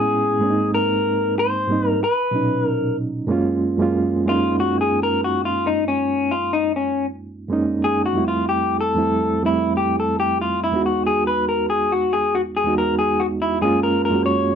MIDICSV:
0, 0, Header, 1, 3, 480
1, 0, Start_track
1, 0, Tempo, 645161
1, 538, Time_signature, 4, 2, 24, 8
1, 10826, End_track
2, 0, Start_track
2, 0, Title_t, "Clean electric guitar"
2, 0, Program_c, 0, 27
2, 0, Note_on_c, 0, 68, 86
2, 551, Note_off_c, 0, 68, 0
2, 554, Note_on_c, 0, 70, 89
2, 996, Note_off_c, 0, 70, 0
2, 1036, Note_on_c, 0, 72, 87
2, 1401, Note_off_c, 0, 72, 0
2, 1401, Note_on_c, 0, 70, 87
2, 1513, Note_off_c, 0, 70, 0
2, 1516, Note_on_c, 0, 71, 80
2, 1978, Note_off_c, 0, 71, 0
2, 1978, Note_on_c, 0, 70, 80
2, 2197, Note_off_c, 0, 70, 0
2, 3193, Note_on_c, 0, 65, 82
2, 3419, Note_off_c, 0, 65, 0
2, 3422, Note_on_c, 0, 66, 90
2, 3574, Note_off_c, 0, 66, 0
2, 3577, Note_on_c, 0, 68, 77
2, 3741, Note_off_c, 0, 68, 0
2, 3744, Note_on_c, 0, 70, 88
2, 3890, Note_off_c, 0, 70, 0
2, 3902, Note_on_c, 0, 66, 80
2, 4054, Note_off_c, 0, 66, 0
2, 4057, Note_on_c, 0, 65, 79
2, 4218, Note_on_c, 0, 63, 77
2, 4222, Note_off_c, 0, 65, 0
2, 4372, Note_off_c, 0, 63, 0
2, 4374, Note_on_c, 0, 61, 77
2, 4697, Note_on_c, 0, 65, 74
2, 4706, Note_off_c, 0, 61, 0
2, 4846, Note_off_c, 0, 65, 0
2, 4859, Note_on_c, 0, 63, 81
2, 5023, Note_off_c, 0, 63, 0
2, 5031, Note_on_c, 0, 61, 67
2, 5248, Note_off_c, 0, 61, 0
2, 5834, Note_on_c, 0, 68, 75
2, 5991, Note_off_c, 0, 68, 0
2, 5994, Note_on_c, 0, 66, 75
2, 6150, Note_off_c, 0, 66, 0
2, 6160, Note_on_c, 0, 65, 67
2, 6298, Note_off_c, 0, 65, 0
2, 6315, Note_on_c, 0, 67, 79
2, 6548, Note_off_c, 0, 67, 0
2, 6551, Note_on_c, 0, 69, 81
2, 7036, Note_off_c, 0, 69, 0
2, 7039, Note_on_c, 0, 64, 77
2, 7252, Note_off_c, 0, 64, 0
2, 7268, Note_on_c, 0, 67, 82
2, 7428, Note_off_c, 0, 67, 0
2, 7438, Note_on_c, 0, 69, 69
2, 7583, Note_off_c, 0, 69, 0
2, 7586, Note_on_c, 0, 67, 75
2, 7731, Note_off_c, 0, 67, 0
2, 7749, Note_on_c, 0, 65, 75
2, 7908, Note_off_c, 0, 65, 0
2, 7913, Note_on_c, 0, 64, 73
2, 8070, Note_off_c, 0, 64, 0
2, 8079, Note_on_c, 0, 66, 70
2, 8230, Note_off_c, 0, 66, 0
2, 8233, Note_on_c, 0, 68, 81
2, 8375, Note_off_c, 0, 68, 0
2, 8387, Note_on_c, 0, 71, 84
2, 8543, Note_off_c, 0, 71, 0
2, 8546, Note_on_c, 0, 70, 76
2, 8700, Note_off_c, 0, 70, 0
2, 8703, Note_on_c, 0, 68, 85
2, 8865, Note_off_c, 0, 68, 0
2, 8870, Note_on_c, 0, 66, 79
2, 9024, Note_on_c, 0, 68, 82
2, 9029, Note_off_c, 0, 66, 0
2, 9186, Note_off_c, 0, 68, 0
2, 9187, Note_on_c, 0, 66, 84
2, 9229, Note_off_c, 0, 66, 0
2, 9349, Note_on_c, 0, 68, 71
2, 9506, Note_off_c, 0, 68, 0
2, 9509, Note_on_c, 0, 70, 78
2, 9653, Note_off_c, 0, 70, 0
2, 9661, Note_on_c, 0, 68, 73
2, 9819, Note_on_c, 0, 66, 76
2, 9824, Note_off_c, 0, 68, 0
2, 9862, Note_off_c, 0, 66, 0
2, 9982, Note_on_c, 0, 64, 72
2, 10131, Note_off_c, 0, 64, 0
2, 10134, Note_on_c, 0, 68, 83
2, 10289, Note_off_c, 0, 68, 0
2, 10292, Note_on_c, 0, 70, 82
2, 10445, Note_off_c, 0, 70, 0
2, 10454, Note_on_c, 0, 70, 77
2, 10604, Note_off_c, 0, 70, 0
2, 10607, Note_on_c, 0, 73, 96
2, 10826, Note_off_c, 0, 73, 0
2, 10826, End_track
3, 0, Start_track
3, 0, Title_t, "Reed electric piano"
3, 0, Program_c, 1, 4
3, 0, Control_c, 1, 64, 127
3, 0, Note_on_c, 1, 45, 64
3, 0, Note_on_c, 1, 56, 58
3, 0, Note_on_c, 1, 59, 60
3, 0, Note_on_c, 1, 61, 58
3, 0, Note_on_c, 1, 64, 72
3, 231, Note_off_c, 1, 45, 0
3, 234, Note_off_c, 1, 56, 0
3, 239, Note_off_c, 1, 59, 0
3, 241, Note_off_c, 1, 61, 0
3, 247, Note_off_c, 1, 64, 0
3, 289, Note_on_c, 1, 44, 69
3, 301, Note_on_c, 1, 56, 62
3, 307, Control_c, 1, 64, 0
3, 309, Note_on_c, 1, 58, 64
3, 319, Note_on_c, 1, 60, 67
3, 324, Note_on_c, 1, 62, 67
3, 363, Note_off_c, 1, 62, 0
3, 374, Note_on_c, 1, 63, 78
3, 436, Control_c, 1, 64, 127
3, 1119, Note_off_c, 1, 44, 0
3, 1125, Note_off_c, 1, 56, 0
3, 1129, Note_off_c, 1, 58, 0
3, 1134, Note_off_c, 1, 60, 0
3, 1161, Note_off_c, 1, 63, 0
3, 1247, Note_on_c, 1, 44, 71
3, 1255, Note_on_c, 1, 55, 62
3, 1261, Note_on_c, 1, 58, 58
3, 1271, Note_on_c, 1, 60, 59
3, 1282, Note_on_c, 1, 63, 76
3, 1492, Note_off_c, 1, 44, 0
3, 1496, Note_off_c, 1, 55, 0
3, 1499, Note_off_c, 1, 58, 0
3, 1504, Note_off_c, 1, 60, 0
3, 1506, Control_c, 1, 64, 0
3, 1510, Note_off_c, 1, 63, 0
3, 1652, Control_c, 1, 64, 127
3, 1721, Note_on_c, 1, 47, 68
3, 1726, Note_on_c, 1, 54, 57
3, 1740, Note_on_c, 1, 46, 60
3, 1746, Note_on_c, 1, 61, 57
3, 1753, Note_on_c, 1, 63, 74
3, 2351, Note_off_c, 1, 47, 0
3, 2354, Note_off_c, 1, 54, 0
3, 2361, Note_off_c, 1, 46, 0
3, 2364, Note_off_c, 1, 61, 0
3, 2367, Note_off_c, 1, 63, 0
3, 2432, Note_on_c, 1, 42, 97
3, 2440, Note_on_c, 1, 56, 84
3, 2446, Note_on_c, 1, 58, 85
3, 2458, Note_on_c, 1, 61, 88
3, 2466, Control_c, 1, 64, 0
3, 2467, Note_on_c, 1, 65, 97
3, 2614, Control_c, 1, 64, 127
3, 2757, Note_off_c, 1, 42, 0
3, 2761, Note_off_c, 1, 56, 0
3, 2764, Note_off_c, 1, 58, 0
3, 2770, Note_off_c, 1, 61, 0
3, 2775, Note_off_c, 1, 65, 0
3, 2809, Note_on_c, 1, 42, 75
3, 2820, Note_on_c, 1, 56, 66
3, 2827, Note_on_c, 1, 58, 66
3, 2837, Note_on_c, 1, 61, 61
3, 2842, Note_on_c, 1, 65, 79
3, 3119, Note_off_c, 1, 42, 0
3, 3125, Note_off_c, 1, 56, 0
3, 3128, Note_off_c, 1, 58, 0
3, 3133, Note_off_c, 1, 61, 0
3, 3136, Note_off_c, 1, 65, 0
3, 3158, Note_on_c, 1, 42, 60
3, 3169, Note_on_c, 1, 56, 54
3, 3176, Note_on_c, 1, 58, 58
3, 3183, Note_on_c, 1, 61, 59
3, 3193, Note_on_c, 1, 63, 67
3, 3994, Note_off_c, 1, 42, 0
3, 3999, Note_off_c, 1, 56, 0
3, 4003, Note_off_c, 1, 58, 0
3, 4006, Note_off_c, 1, 61, 0
3, 4011, Note_off_c, 1, 63, 0
3, 5568, Note_on_c, 1, 42, 83
3, 5578, Note_on_c, 1, 56, 76
3, 5584, Note_on_c, 1, 58, 75
3, 5594, Note_on_c, 1, 61, 74
3, 5600, Note_on_c, 1, 63, 92
3, 6049, Note_on_c, 1, 41, 73
3, 6053, Note_off_c, 1, 42, 0
3, 6058, Note_off_c, 1, 56, 0
3, 6059, Note_on_c, 1, 55, 60
3, 6061, Note_off_c, 1, 58, 0
3, 6065, Note_on_c, 1, 57, 65
3, 6066, Note_off_c, 1, 61, 0
3, 6066, Control_c, 1, 64, 0
3, 6069, Note_off_c, 1, 63, 0
3, 6076, Note_on_c, 1, 60, 60
3, 6082, Note_on_c, 1, 64, 77
3, 6199, Control_c, 1, 64, 127
3, 6567, Note_off_c, 1, 41, 0
3, 6572, Note_off_c, 1, 55, 0
3, 6575, Note_off_c, 1, 57, 0
3, 6580, Note_off_c, 1, 60, 0
3, 6584, Note_off_c, 1, 64, 0
3, 6656, Note_on_c, 1, 41, 67
3, 6661, Note_on_c, 1, 55, 57
3, 6673, Note_on_c, 1, 57, 60
3, 6680, Note_on_c, 1, 60, 56
3, 6685, Note_on_c, 1, 64, 69
3, 6963, Note_off_c, 1, 41, 0
3, 6966, Note_off_c, 1, 55, 0
3, 6971, Note_off_c, 1, 57, 0
3, 6975, Note_off_c, 1, 60, 0
3, 6977, Note_off_c, 1, 64, 0
3, 7008, Note_on_c, 1, 41, 62
3, 7012, Note_on_c, 1, 55, 60
3, 7018, Note_on_c, 1, 57, 61
3, 7027, Note_on_c, 1, 60, 57
3, 7034, Note_on_c, 1, 64, 67
3, 7838, Note_off_c, 1, 41, 0
3, 7841, Note_off_c, 1, 55, 0
3, 7844, Note_off_c, 1, 57, 0
3, 7848, Note_off_c, 1, 60, 0
3, 7852, Note_off_c, 1, 64, 0
3, 7972, Note_on_c, 1, 40, 66
3, 7980, Note_on_c, 1, 56, 66
3, 7985, Note_on_c, 1, 59, 68
3, 7988, Control_c, 1, 64, 0
3, 7991, Note_on_c, 1, 63, 58
3, 8001, Note_on_c, 1, 66, 79
3, 8124, Control_c, 1, 64, 127
3, 8801, Note_off_c, 1, 40, 0
3, 8804, Note_off_c, 1, 56, 0
3, 8807, Note_off_c, 1, 59, 0
3, 8810, Note_off_c, 1, 63, 0
3, 8815, Note_off_c, 1, 66, 0
3, 9406, Note_on_c, 1, 40, 73
3, 9412, Note_on_c, 1, 56, 67
3, 9420, Note_on_c, 1, 59, 58
3, 9428, Note_on_c, 1, 63, 63
3, 9436, Note_on_c, 1, 66, 71
3, 10034, Note_off_c, 1, 40, 0
3, 10037, Note_off_c, 1, 56, 0
3, 10041, Note_off_c, 1, 59, 0
3, 10045, Note_off_c, 1, 63, 0
3, 10049, Note_off_c, 1, 66, 0
3, 10128, Note_on_c, 1, 42, 79
3, 10134, Note_on_c, 1, 56, 77
3, 10142, Note_on_c, 1, 58, 75
3, 10147, Note_on_c, 1, 61, 77
3, 10148, Control_c, 1, 64, 0
3, 10156, Note_on_c, 1, 65, 95
3, 10278, Control_c, 1, 64, 127
3, 10445, Note_off_c, 1, 42, 0
3, 10448, Note_off_c, 1, 56, 0
3, 10452, Note_off_c, 1, 58, 0
3, 10454, Note_off_c, 1, 61, 0
3, 10459, Note_off_c, 1, 65, 0
3, 10493, Note_on_c, 1, 42, 65
3, 10497, Note_on_c, 1, 56, 56
3, 10507, Note_on_c, 1, 58, 59
3, 10518, Note_on_c, 1, 61, 60
3, 10527, Note_on_c, 1, 66, 65
3, 10802, Note_off_c, 1, 42, 0
3, 10804, Note_off_c, 1, 56, 0
3, 10809, Note_off_c, 1, 58, 0
3, 10814, Note_off_c, 1, 61, 0
3, 10818, Note_off_c, 1, 66, 0
3, 10826, End_track
0, 0, End_of_file